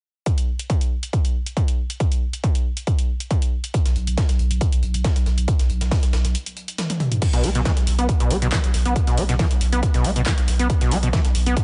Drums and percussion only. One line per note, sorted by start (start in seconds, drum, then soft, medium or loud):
0.26 kick loud
0.26 closed hi-hat medium
0.38 closed hi-hat medium
0.59 closed hi-hat medium
0.70 kick loud
0.70 closed hi-hat medium
0.81 closed hi-hat medium
1.03 closed hi-hat medium
1.13 kick loud
1.13 closed hi-hat medium
1.25 closed hi-hat medium
1.46 closed hi-hat medium
1.57 kick loud
1.57 closed hi-hat medium
1.68 closed hi-hat medium
1.90 closed hi-hat medium
2.00 kick loud
2.00 closed hi-hat medium
2.12 closed hi-hat medium
2.33 closed hi-hat medium
2.44 kick loud
2.44 closed hi-hat medium
2.55 closed hi-hat medium
2.77 closed hi-hat medium
2.87 kick loud
2.87 closed hi-hat medium
2.99 closed hi-hat medium
3.20 closed hi-hat medium
3.31 kick loud
3.31 closed hi-hat medium
3.42 closed hi-hat medium
3.64 closed hi-hat medium
3.74 kick loud
3.74 closed hi-hat medium
3.86 snare medium
3.86 closed hi-hat medium
3.96 closed hi-hat medium
4.07 closed hi-hat medium
4.18 kick loud
4.18 snare loud
4.18 closed hi-hat medium
4.29 snare soft
4.29 closed hi-hat medium
4.39 closed hi-hat medium
4.51 closed hi-hat medium
4.61 kick loud
4.61 closed hi-hat medium
4.73 closed hi-hat medium
4.83 closed hi-hat medium
4.94 closed hi-hat soft
4.94 closed hi-hat medium
5.04 kick loud
5.04 snare loud
5.04 closed hi-hat medium
5.16 snare soft
5.16 closed hi-hat medium
5.26 snare soft
5.26 closed hi-hat medium
5.38 closed hi-hat medium
5.48 kick loud
5.48 closed hi-hat medium
5.59 snare soft
5.59 closed hi-hat medium
5.70 closed hi-hat medium
5.81 snare medium
5.81 closed hi-hat medium
5.91 kick loud
5.91 snare loud
5.91 closed hi-hat medium
5.91 open hi-hat medium
6.03 snare soft
6.03 closed hi-hat medium
6.13 snare loud
6.13 closed hi-hat medium
6.25 snare soft
6.25 closed hi-hat medium
6.35 closed hi-hat medium
6.46 closed hi-hat medium
6.57 closed hi-hat medium
6.68 closed hi-hat soft
6.68 closed hi-hat medium
6.78 snare loud
6.78 closed hi-hat medium
6.78 high tom medium
6.90 snare soft
6.90 closed hi-hat medium
6.90 high tom medium
7.00 snare soft
7.00 closed hi-hat medium
7.00 mid tom medium
7.12 closed hi-hat medium
7.12 mid tom medium
7.22 kick loud
7.22 closed hi-hat medium
7.22 crash medium
7.33 snare medium
7.33 closed hi-hat medium
7.44 closed hi-hat medium
7.44 open hi-hat loud
7.55 closed hi-hat medium
7.65 kick loud
7.65 snare loud
7.65 closed hi-hat medium
7.77 snare soft
7.77 closed hi-hat medium
7.87 closed hi-hat medium
7.87 open hi-hat loud
7.99 closed hi-hat medium
8.09 kick loud
8.09 closed hi-hat medium
8.20 closed hi-hat medium
8.31 closed hi-hat medium
8.31 open hi-hat loud
8.42 closed hi-hat soft
8.42 closed hi-hat medium
8.52 kick loud
8.52 snare loud
8.52 clap loud
8.52 closed hi-hat medium
8.64 snare soft
8.64 closed hi-hat medium
8.74 snare soft
8.74 closed hi-hat medium
8.74 open hi-hat loud
8.86 closed hi-hat medium
8.96 kick loud
8.96 closed hi-hat medium
9.07 snare soft
9.07 closed hi-hat medium
9.18 closed hi-hat medium
9.18 open hi-hat loud
9.29 snare medium
9.29 closed hi-hat medium
9.39 kick loud
9.39 snare loud
9.39 closed hi-hat medium
9.39 open hi-hat medium
9.51 snare soft
9.51 closed hi-hat medium
9.61 closed hi-hat medium
9.61 open hi-hat loud
9.73 closed hi-hat medium
9.83 kick loud
9.83 closed hi-hat medium
9.94 snare medium
9.94 closed hi-hat medium
10.05 closed hi-hat medium
10.05 open hi-hat loud
10.16 closed hi-hat medium
10.26 kick loud
10.26 snare loud
10.26 clap loud
10.26 closed hi-hat medium
10.38 snare soft
10.38 closed hi-hat medium
10.48 snare soft
10.48 closed hi-hat medium
10.48 open hi-hat loud
10.59 closed hi-hat medium
10.70 kick loud
10.70 closed hi-hat medium
10.81 snare medium
10.81 closed hi-hat medium
10.91 closed hi-hat medium
10.91 open hi-hat loud
11.03 closed hi-hat medium
11.13 kick loud
11.13 snare loud
11.13 closed hi-hat medium
11.25 snare soft
11.25 closed hi-hat medium
11.35 closed hi-hat medium
11.35 open hi-hat loud
11.46 closed hi-hat medium
11.57 kick loud
11.57 closed hi-hat medium